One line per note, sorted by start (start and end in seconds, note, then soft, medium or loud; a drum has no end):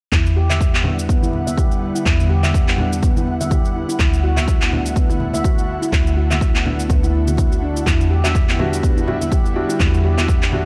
0.12 1.91 E2 medium
0.12 3.96 D3 medium
0.12 3.96 G3 medium
0.12 3.96 B3 medium
0.12 0.25 E4 medium
0.12 7.83 E4 medium
0.12 7.83 F#5 medium
0.12 kick loud
0.12 clap medium
0.12 high conga loud
0.12 shaker medium
0.26 muted conga soft
0.26 shaker soft
0.36 0.49 G4 medium
0.50 0.60 E5 medium
0.50 clap medium
0.50 high conga medium
0.50 shaker medium
0.61 kick loud
0.61 shaker medium
0.74 0.80 B3 medium
0.74 clap medium
0.74 shaker soft
0.84 0.98 D4 medium
0.84 high conga medium
0.84 low conga loud
0.98 muted conga soft
0.98 shaker medium
1.09 1.21 B3 medium
1.09 kick loud
1.09 shaker medium
1.22 1.33 E4 loud
1.22 high conga medium
1.22 shaker soft
1.33 muted conga soft
1.33 low conga medium
1.47 1.57 E5 medium
1.47 high conga medium
1.47 shaker medium
1.57 1.65 G4 medium
1.57 kick loud
1.57 shaker medium
1.71 muted conga medium
1.71 shaker soft
1.82 1.94 E4 medium
1.95 2.04 E4 medium
1.95 shaker medium
2.06 3.85 E2 medium
2.06 2.18 E4 medium
2.06 kick loud
2.06 clap medium
2.06 high conga loud
2.06 shaker medium
2.20 muted conga medium
2.20 shaker soft
2.30 2.42 G4 medium
2.43 2.54 E5 medium
2.43 clap medium
2.43 high conga loud
2.43 shaker medium
2.54 kick loud
2.54 shaker medium
2.68 2.74 B3 medium
2.68 clap medium
2.68 shaker soft
2.78 2.92 D4 medium
2.78 high conga medium
2.78 low conga loud
2.92 muted conga soft
2.92 shaker medium
3.02 3.15 B3 medium
3.02 kick loud
3.02 low conga medium
3.02 shaker medium
3.17 3.27 E4 loud
3.17 high conga loud
3.17 shaker soft
3.27 muted conga soft
3.41 3.51 E5 medium
3.41 high conga medium
3.41 shaker medium
3.50 3.59 G4 medium
3.50 kick loud
3.50 high conga loud
3.50 shaker medium
3.64 muted conga soft
3.64 shaker soft
3.76 3.88 E4 medium
3.89 3.99 E4 medium
3.89 shaker medium
3.99 5.78 D2 medium
3.99 10.65 D3 medium
3.99 7.83 A3 medium
3.99 4.12 E4 medium
3.99 kick loud
3.99 clap medium
3.99 high conga loud
3.99 shaker medium
4.13 muted conga soft
4.13 shaker soft
4.23 4.36 F#4 medium
4.37 4.47 E5 medium
4.37 clap medium
4.37 high conga loud
4.37 shaker medium
4.48 kick loud
4.48 muted conga soft
4.48 shaker medium
4.61 4.67 B3 medium
4.61 clap medium
4.61 shaker soft
4.72 4.85 D4 medium
4.72 high conga medium
4.72 low conga medium
4.86 muted conga soft
4.86 shaker medium
4.96 5.09 B3 medium
4.96 kick loud
4.96 shaker medium
5.10 5.20 E4 loud
5.10 high conga loud
5.10 shaker soft
5.20 muted conga soft
5.20 low conga medium
5.34 5.44 E5 medium
5.34 high conga loud
5.34 shaker medium
5.44 5.52 F#4 medium
5.44 kick loud
5.44 shaker medium
5.58 muted conga soft
5.58 shaker soft
5.68 5.81 E4 medium
5.82 5.91 E4 medium
5.82 shaker medium
5.92 6.89 D2 medium
5.92 6.05 E4 medium
5.92 kick loud
5.92 clap medium
5.92 high conga loud
5.92 shaker medium
6.06 muted conga soft
6.06 shaker soft
6.17 6.29 F#4 medium
6.31 6.41 E5 medium
6.31 clap medium
6.31 high conga loud
6.31 shaker medium
6.41 kick loud
6.41 shaker medium
6.54 6.61 B3 medium
6.54 clap medium
6.54 shaker soft
6.65 6.79 D4 medium
6.65 high conga medium
6.65 low conga medium
6.79 muted conga soft
6.79 shaker medium
6.90 7.84 D2 medium
6.90 7.02 B3 medium
6.90 kick loud
6.90 low conga loud
6.90 shaker medium
7.03 7.14 E4 loud
7.03 high conga loud
7.03 shaker soft
7.15 muted conga soft
7.27 7.37 F#4 medium
7.27 high conga loud
7.27 shaker medium
7.37 7.51 E4 medium
7.37 kick loud
7.37 high conga loud
7.37 shaker medium
7.52 7.58 F#4 medium
7.52 muted conga soft
7.52 shaker soft
7.62 7.75 D4 medium
7.76 7.86 E4 medium
7.76 shaker medium
7.86 9.66 E2 medium
7.86 10.65 G3 medium
7.86 10.65 B3 medium
7.86 9.78 E4 medium
7.86 7.99 E4 medium
7.86 10.65 F#5 medium
7.86 kick loud
7.86 clap medium
7.86 high conga loud
7.86 shaker medium
8.00 muted conga soft
8.00 shaker soft
8.11 8.23 G4 medium
8.24 8.30 G3 medium
8.24 8.30 D4 medium
8.24 8.30 E4 medium
8.24 8.30 F#4 medium
8.24 8.34 E5 medium
8.24 clap medium
8.24 high conga medium
8.24 shaker medium
8.35 kick loud
8.35 shaker medium
8.49 8.55 B3 medium
8.49 clap medium
8.49 shaker soft
8.59 9.05 G3 medium
8.59 9.05 D4 medium
8.59 8.72 D4 medium
8.59 9.05 E4 medium
8.59 9.05 F#4 loud
8.59 high conga medium
8.59 low conga medium
8.73 muted conga soft
8.73 shaker medium
8.83 8.96 B3 medium
8.83 kick loud
8.83 shaker medium
8.97 9.07 E4 loud
8.97 high conga medium
8.97 shaker soft
9.07 9.15 G3 medium
9.07 9.15 D4 medium
9.07 9.15 E4 medium
9.07 9.15 F#4 loud
9.07 muted conga soft
9.07 low conga medium
9.21 9.31 E5 medium
9.21 high conga medium
9.21 shaker medium
9.32 9.39 G4 medium
9.32 kick loud
9.32 shaker medium
9.45 muted conga soft
9.45 shaker soft
9.56 10.15 G3 medium
9.56 10.15 D4 medium
9.56 10.15 E4 medium
9.56 9.68 E4 medium
9.56 10.15 F#4 medium
9.69 9.79 E4 medium
9.69 shaker medium
9.80 10.65 E2 medium
9.80 10.65 D4 medium
9.80 9.93 E4 medium
9.80 kick loud
9.80 clap medium
9.80 high conga medium
9.80 shaker medium
9.93 muted conga soft
9.93 shaker soft
10.04 10.17 G4 medium
10.18 10.27 G3 medium
10.18 10.27 D4 medium
10.18 10.27 E4 medium
10.18 10.27 F#4 medium
10.18 10.28 E5 medium
10.18 clap medium
10.18 high conga medium
10.18 shaker medium
10.28 kick loud
10.28 muted conga soft
10.28 shaker medium
10.42 10.48 B3 medium
10.42 clap medium
10.42 shaker soft
10.52 10.65 G3 medium
10.52 10.65 D4 medium
10.52 10.65 E4 medium
10.52 10.65 F#4 medium
10.52 high conga medium
10.52 low conga medium